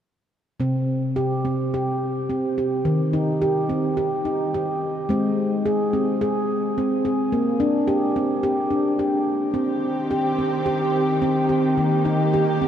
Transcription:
0.60 handpan C3 C4
1.16 handpan G4
1.45 handpan C4
1.74 handpan G4
2.30 handpan C4
2.58 handpan G4
2.85 handpan D#3
3.13 handpan D#4
3.42 handpan G4
3.69 handpan C4
3.97 handpan G4
4.25 handpan D#4
4.54 handpan G4
5.09 handpan G#3 C4
5.66 handpan G#4
5.93 handpan C4
6.21 handpan G#4
6.78 handpan C4
7.05 handpan G#4
7.32 handpan A#3
7.60 handpan D4
7.88 handpan G4
8.16 handpan C4
8.43 handpan G4
8.71 handpan D4
8.99 handpan G4
9.54 string section D#3 C4 G4, handpan C4
10.11 handpan G4
10.39 handpan C4
10.66 handpan G4
11.22 handpan C4
11.49 handpan G4
11.77 handpan D#3, string section A#3 G4
12.05 handpan D#4
12.34 handpan G4
12.61 handpan C4

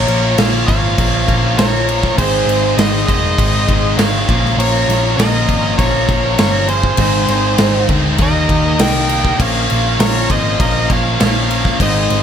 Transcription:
Already playing: distorted electric guitar A#2 F3 A#3, tonewheel organ F4 C#5 A#5, lead electric guitar A#4 C#5
0.08 picked electric bass A#1, distorted electric guitar A#2 F3 A#3 C#4 F4, crash
0.38 picked electric bass A#1, distorted electric guitar A#2 F3 A#3 C#4 F4, lead electric guitar C#5 F5, snare, crash
0.67 picked electric bass G#1, distorted electric guitar A#2 F3 A#3 C#4 F4, lead electric guitar C#5 F5, kick, crash
0.98 picked electric bass A#1, distorted electric guitar A#2 F3 A#3 C#4 F4, kick, crash
1.28 picked electric bass A#1, distorted electric guitar A#2 F3 A#3 C#4 F4, kick, crash
1.58 picked electric bass A#1, distorted electric guitar A#2 F3 A#3 C#4 F4, lead electric guitar A#4 C#5, snare, crash
1.88 distorted electric guitar A#2 F3 A#3 C#4 F4, crash
2.03 kick, snare
2.18 picked electric bass G#1, distorted electric guitar G#2 D#3 G#3 C4 D#4, lead electric guitar G#4 C5, tonewheel organ G#4 D#5 C6, kick, crash
2.46 picked electric bass G#1, distorted electric guitar G#2 D#3 G#3 C4 D#4, crash
2.77 picked electric bass G#1, distorted electric guitar G#2 D#3 G#3 C4 D#4, lead electric guitar C5 D#5, snare, crash
3.07 picked electric bass F1, distorted electric guitar G#2 D#3 G#3 C4 D#4, lead electric guitar C5 D#5, kick, crash
3.38 picked electric bass G#1, distorted electric guitar G#2 D#3 G#3 C4 D#4, kick, crash
3.69 picked electric bass G#1, distorted electric guitar G#2 D#3 G#3 C4 D#4, kick, crash
3.98 picked electric bass G#1, distorted electric guitar G#2 D#3 G#3 C4 D#4, lead electric guitar C#5 F5, snare, crash
4.28 picked electric bass A#1, distorted electric guitar A#2 F3 A#3 C#4 F4, tonewheel organ C#4 F4 A#5, kick, crash
4.45 snare
4.57 picked electric bass A#1, distorted electric guitar A#2 F3 A#3 C#4 F4, lead electric guitar A#4 C#5, crash
4.88 picked electric bass A#1, distorted electric guitar A#2 F3 A#3 C#4 F4, snare, crash
5.17 picked electric bass A#1, distorted electric guitar A#2 F3 A#3 C#4 F4, lead electric guitar A#4 D#5, snare, crash
5.49 picked electric bass G#1, distorted electric guitar A#2 F3 A#3 C#4 F4, kick, crash
5.78 picked electric bass A#1, distorted electric guitar A#2 F3 A#3 C#4 F4, lead electric guitar A#4 C#5, kick, crash
6.09 picked electric bass A#1, distorted electric guitar A#2 F3 A#3 C#4 F4, kick, crash
6.38 picked electric bass G1, distorted electric guitar A#2 F3 A#3 C#4 F4, lead electric guitar A#4 C#5, snare, crash
6.68 distorted electric guitar A#2 F3 A#3 C#4 F4, lead electric guitar G#4 C5, crash
6.83 kick
6.97 picked electric bass G#1, distorted electric guitar G#2 D#3 G#3 C4 D#4, tonewheel organ D#4 C5 G#5, kick, crash
7.28 picked electric bass G#1, distorted electric guitar G#2 D#3 G#3 C4 D#4, snare, crash
7.58 picked electric bass G#1, distorted electric guitar G#2 D#3 G#3 C4 D#4, snare, crash
7.89 picked electric bass D2, distorted electric guitar G#2 D#3 G#3 C4 D#4, kick, crash
8.18 picked electric bass D#2, distorted electric guitar D#3 G3 A#3 D#4, tonewheel organ A#4 G5, lead electric guitar A#4 D#5, kick, crash
8.49 picked electric bass D#2, distorted electric guitar D#3 G3 A#3 D#4, kick, crash
8.79 picked electric bass C2, distorted electric guitar D#3 G3 A#3 D#4, lead electric guitar D#5 G5, snare, crash
9.09 distorted electric guitar D#3 G3 A#3 D#4, crash
9.25 kick
9.39 picked electric bass A#1, distorted electric guitar A#2 F3 A#3 C#4 F4, tonewheel organ C#4 F5, lead electric guitar C#5 F5, kick, crash
9.70 picked electric bass A#1, distorted electric guitar A#2 F3 A#3 C#4 F4, crash
9.99 picked electric bass A#1, distorted electric guitar A#2 F3 A#3 C#4 F4, lead electric guitar A#4 C#5, snare, crash
10.30 picked electric bass G#1, distorted electric guitar A#2 F3 A#3 C#4 F4, lead electric guitar C5 D#5, kick, crash
10.59 picked electric bass A#1, distorted electric guitar A#2 F3 A#3 C#4 F4, lead electric guitar A#4 D#5, kick, crash
10.90 picked electric bass A#1, distorted electric guitar A#2 F3 A#3 C#4 F4, lead electric guitar C#5 F5, kick, crash
11.20 picked electric bass A#1, distorted electric guitar A#2 F3 A#3 C#4 F4, lead electric guitar C#5 F5, snare, crash
11.50 distorted electric guitar A#2 F3 A#3 C#4 F4, crash
11.65 kick, snare
11.80 picked electric bass G#1, distorted electric guitar G#2 D#3 G#3 C4 D#4, tonewheel organ D#4 C5 G#5, lead electric guitar C5 D#5, kick, crash
12.10 picked electric bass G#1, distorted electric guitar G#2 D#3 G#3 C4 D#4, snare, crash

